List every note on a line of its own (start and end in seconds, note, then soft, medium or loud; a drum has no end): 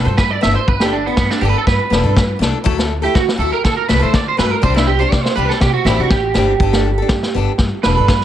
0.05 0.35 G2 medium
0.05 0.20 A4 soft
0.05 0.17 C5 medium
0.05 muted steel-string acoustic guitar stroke soft
0.17 0.30 B4 medium
0.17 kick medium
0.17 snare medium
0.30 0.42 D5 medium
0.41 0.54 G1 medium
0.41 0.58 B3 medium
0.41 0.59 D4 medium
0.41 0.59 A4 medium
0.41 0.55 E5 loud
0.41 snare medium
0.55 0.67 C5 medium
0.68 1.07 G1 medium
0.68 0.81 B4 medium
0.68 kick medium
0.80 0.92 G4 medium
0.80 0.96 A4 medium
0.80 snare medium
0.84 0.97 D4 soft
0.93 1.06 D4 medium
1.06 1.16 B3 medium
1.06 1.21 D4 soft
1.17 1.28 G2 medium
1.17 1.30 B3 medium
1.17 kick medium
1.17 snare medium
1.30 1.42 D4 medium
1.30 snare medium
1.41 1.52 G1 medium
1.41 1.57 B3 medium
1.41 1.58 D4 medium
1.41 1.49 G4 medium
1.41 1.59 A4 medium
1.49 1.58 B4 medium
1.58 1.66 A4 medium
1.67 1.77 G2 medium
1.67 2.37 B4 medium
1.67 kick medium
1.67 snare medium
1.90 2.02 E1 medium
1.90 2.04 B3 medium
1.90 2.05 D4 medium
1.90 2.02 A4 medium
1.90 snare medium
2.03 2.33 G2 medium
2.03 2.20 D4 soft
2.03 2.18 A4 medium
2.17 kick medium
2.17 snare medium
2.39 2.51 C2 medium
2.39 2.57 D4 medium
2.39 2.57 A4 medium
2.39 muted steel-string acoustic guitar stroke medium
2.39 snare medium
2.64 3.05 D2 medium
2.64 2.78 F#3 medium
2.64 2.79 A3 medium
2.64 2.78 E4 medium
2.64 2.77 A4 medium
2.64 kick medium
2.78 2.94 A3 soft
2.78 2.93 A4 medium
2.78 muted steel-string acoustic guitar stroke medium
2.78 snare medium
3.02 3.19 A3 soft
3.02 3.18 E4 soft
3.02 3.16 G4 medium
3.02 3.17 A4 medium
3.15 3.26 D3 medium
3.15 3.28 F#4 medium
3.15 kick medium
3.15 snare medium
3.29 snare medium
3.38 3.50 D2 medium
3.38 3.54 F#3 medium
3.38 3.56 E4 medium
3.38 3.52 A4 medium
3.42 3.56 A4 medium
3.52 3.64 A#4 loud
3.64 3.75 D3 medium
3.64 3.76 A4 medium
3.64 kick medium
3.64 snare medium
3.77 3.88 A#4 medium
3.89 4.00 C2 medium
3.89 4.02 A3 medium
3.89 4.00 E4 medium
3.89 3.98 A4 medium
3.89 4.02 B4 medium
3.89 snare medium
3.99 4.32 D3 medium
3.99 4.17 A3 soft
3.99 4.16 E4 soft
3.99 4.15 A4 medium
3.99 4.14 C5 medium
4.13 4.27 D5 medium
4.13 kick medium
4.13 snare medium
4.28 4.38 C5 medium
4.37 4.49 G2 medium
4.37 4.54 F#3 medium
4.37 4.54 A3 medium
4.37 4.55 A4 medium
4.37 4.52 B4 medium
4.37 muted steel-string acoustic guitar stroke medium
4.37 snare medium
4.52 4.63 A#4 medium
4.62 5.02 C2 medium
4.62 4.76 G3 medium
4.62 4.76 C4 medium
4.62 4.75 D4 medium
4.62 4.73 G4 medium
4.62 4.76 C5 medium
4.62 kick medium
4.74 4.92 C4 soft
4.74 4.91 D4 medium
4.74 4.88 E4 medium
4.74 muted steel-string acoustic guitar stroke soft
4.74 snare medium
4.87 5.00 G4 medium
4.99 5.16 C4 soft
4.99 5.15 D4 soft
4.99 5.14 G4 medium
4.99 5.11 C5 medium
5.11 5.23 C3 medium
5.11 5.23 D5 loud
5.11 kick medium
5.11 snare medium
5.23 5.35 C5 medium
5.23 snare medium
5.35 5.48 C2 medium
5.35 5.52 G3 medium
5.35 5.53 C4 medium
5.35 5.53 D4 medium
5.35 5.54 G4 medium
5.35 5.49 B4 medium
5.49 5.61 A4 medium
5.49 snare soft
5.61 5.72 C3 medium
5.61 5.73 G4 medium
5.61 kick medium
5.61 snare medium
5.73 5.86 F#4 medium
5.85 5.96 A1 medium
5.85 6.00 G3 medium
5.85 6.01 C4 medium
5.85 5.99 E4 medium
5.85 snare medium
5.89 6.01 D4 medium
5.89 5.98 G4 medium
5.99 6.09 C3 medium
5.99 6.15 D4 soft
5.99 6.11 F#4 medium
5.99 6.14 G4 soft
6.04 6.16 C4 soft
6.10 6.33 A1 medium
6.10 7.56 G4 medium
6.10 kick medium
6.10 snare medium
6.34 6.58 G1 medium
6.34 6.51 G3 medium
6.34 6.52 C4 medium
6.34 6.52 D4 medium
6.34 6.53 G4 medium
6.34 snare medium
6.60 7.00 G1 medium
6.60 6.74 B3 medium
6.60 6.75 D4 medium
6.60 6.72 A4 medium
6.60 kick medium
6.73 6.90 D4 soft
6.73 6.88 A4 medium
6.73 snare medium
6.98 7.13 A4 medium
7.02 7.15 D4 soft
7.09 7.20 G2 medium
7.09 kick medium
7.09 snare medium
7.23 snare medium
7.34 7.46 G1 medium
7.34 7.50 B3 medium
7.34 7.51 D4 medium
7.34 7.52 A4 medium
7.58 7.70 G2 medium
7.58 kick medium
7.58 snare medium
7.83 7.95 E1 medium
7.83 7.97 B3 medium
7.83 7.98 D4 medium
7.83 7.96 A4 medium
7.83 8.24 B4 loud
7.83 snare medium
7.97 8.24 G2 medium
7.97 8.13 D4 soft
7.97 8.11 A4 medium
8.08 kick medium
8.08 snare medium
8.21 snare soft